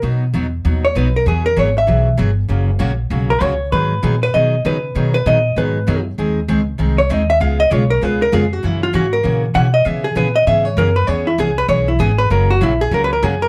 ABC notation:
X:1
M:4/4
L:1/8
Q:"Swing" 1/4=196
K:F#mix
V:1 name="Hollow-body jazz guitar"
z4 z c B A | G A c e3 z2 | z4 z A c2 | B3 B d2 B2- |
B B d2 B3 z | z4 z c d e | ^e d c A B A G F | E ^E F A2 z f d |
e G B d e c A B | c E G B c E G B | A F E G (3A B A G A |]
V:2 name="Steel-string acoustic guitar"
[B,,F,B,DF] z [B,,F,B,DF] z [B,,F,B,DF] z [B,,F,B,DF] z | [E,F,B,FG] z [E,F,B,FG] z [E,F,B,FG] z [E,F,B,FG] z | [C,F,A,CF] z [C,F,A,CF] z [C,F,A,CF] z [C,F,A,CF] z | [D,F,B,DG] z [D,F,B,DG] z [D,F,B,DG] z [D,F,B,DG] z |
[B,,D,F,B,DG] z [B,,D,F,B,DG] z [B,,D,F,B,DG] z [B,,D,F,B,DG] z | [D,G,^B,DG] z [D,G,B,DG] z [D,G,B,DG] z [D,G,B,DG] z | [C,G,B,^EG] z [C,G,B,EG] z [C,G,B,EG] z [C,G,B,EG] z | [C,E,A,CF] z [C,E,A,CF] z [C,E,A,CF] z [C,E,A,CF] z |
[C,E,B,CG] z [C,E,B,CG] z [C,E,B,CG] z [C,E,B,CG] z | [E,B,CG] z [E,B,CG] z [E,B,CG] z [E,B,CG] z | [C,F,A,CF] z [C,F,A,CF] z [C,F,A,CF] z [C,F,A,CF] z |]
V:3 name="Upright bass" clef=bass
B,,2 E,,2 D,,2 B,,,2 | E,,2 G,,,2 B,,,2 =G,,,2 | F,,,2 A,,,2 B,,,2 C,,2 | G,,2 A,,2 B,,2 C,2 |
B,,2 A,,2 G,,2 F,,2 | D,,2 C,,2 ^B,,,2 D,,2 | C,,2 B,,,2 C,,2 ^E,,2 | F,,2 G,,2 A,,2 B,,2 |
C,2 A,,2 G,,2 F,,2 | E,,2 =C,,2 B,,,2 G,,,2 | F,,,2 A,,,2 C,,2 F,,2 |]